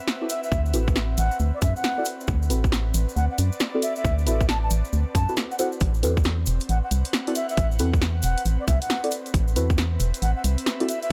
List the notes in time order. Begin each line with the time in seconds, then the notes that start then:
Already playing: C4 B4 E5 F#5
0.08 snare, cabasa
0.21 C4 E4 F#4 A4 D5
0.29 E5, open hi-hat, cabasa
0.43 E5, cabasa
0.52 D2, kick, cabasa
0.66 cabasa
0.74 A1 C4 E4 F#4 A4 B4, open hi-hat, cabasa
0.88 kick, cabasa
0.96 snare, cabasa
1.17 A1 F#5, open hi-hat, cabasa
1.31 cabasa
1.39 D2, cabasa
1.54 D5
1.62 F#2 E5, kick, cross-stick, open hi-hat, cabasa
1.76 F#5, cabasa
1.84 snare, cabasa
1.98 C4 E4 F#4 A4 D5
2.05 open hi-hat, cabasa
2.21 cabasa
2.27 D2, kick, cabasa
2.42 cabasa
2.50 A1 C4 E4 F#4 A4 B4, open hi-hat, cabasa
2.64 D5, kick, cabasa
2.72 snare, cabasa
2.94 A1, open hi-hat, cabasa
3.09 cabasa
3.16 D2 F#5, cabasa
3.31 F#5
3.38 F#2, open hi-hat, cabasa
3.52 cabasa
3.60 snare, cabasa
3.74 C4 E4 F#4 A4 D5
3.82 E5, open hi-hat, cabasa
3.96 E5, cabasa
4.04 D2, kick, cabasa
4.18 cabasa
4.26 A1 C4 E4 F#4 A4 B4 E5, open hi-hat, cabasa
4.41 kick, cabasa
4.49 A5, snare, cabasa
4.63 A5
4.70 A1, open hi-hat, cabasa
4.85 cabasa
4.93 D2, cabasa
5.15 F#2 A5, kick, cross-stick, open hi-hat, cabasa
5.29 C4 E4 F#4 A4 B4, cabasa
5.37 snare, cabasa
5.51 F#5, cabasa
5.59 C4 E4 F#4 A4 C5 F#5, open hi-hat, cabasa
5.72 cabasa
5.80 A1 C4, kick, closed hi-hat, cabasa
5.94 cabasa
6.03 E2 C4 E4 F#4 A4 B4, open hi-hat, cabasa
6.12 B4
6.17 kick, cabasa
6.24 snare, cabasa
6.46 E1, open hi-hat, cabasa
6.53 F#5
6.60 closed hi-hat, cabasa
6.69 A1 F#5, closed hi-hat, cabasa
6.84 F#5
6.91 C2, open hi-hat, cabasa
7.05 closed hi-hat, cabasa
7.13 snare, closed hi-hat, cabasa
7.27 C4 E4 F#4 A4 D5, closed hi-hat
7.35 E5, open hi-hat, cabasa
7.49 E5, closed hi-hat, cabasa
7.57 A1, kick, closed hi-hat, cabasa
7.72 cabasa
7.79 E2 C4 E4 F#4 A4 B4, open hi-hat, cabasa
7.93 kick, cabasa
8.02 snare, cabasa
8.22 E1 F#5, open hi-hat, cabasa
8.38 closed hi-hat, cabasa
8.45 A1, closed hi-hat, cabasa
8.60 D5
8.68 C2 E5, kick, cross-stick, open hi-hat, cabasa
8.82 F#5, closed hi-hat, cabasa
8.90 snare, closed hi-hat, cabasa
9.04 C4 E4 F#4 A4 D5, closed hi-hat
9.11 open hi-hat, cabasa
9.26 closed hi-hat, cabasa
9.34 A1, kick, closed hi-hat, cabasa
9.48 cabasa
9.55 E2 C4 E4 F#4 A4 B4 E5, open hi-hat, cabasa
9.70 kick, cabasa
9.78 snare, cabasa
10.00 E1, open hi-hat, cabasa
10.14 closed hi-hat, cabasa
10.22 A1 F#5, closed hi-hat, cabasa
10.36 F#5
10.44 C2, open hi-hat, cabasa
10.58 closed hi-hat, cabasa
10.66 snare, closed hi-hat, cabasa
10.80 C4 E4 F#4 A4 D5, closed hi-hat
10.88 E5, open hi-hat, cabasa
11.02 E5, closed hi-hat, cabasa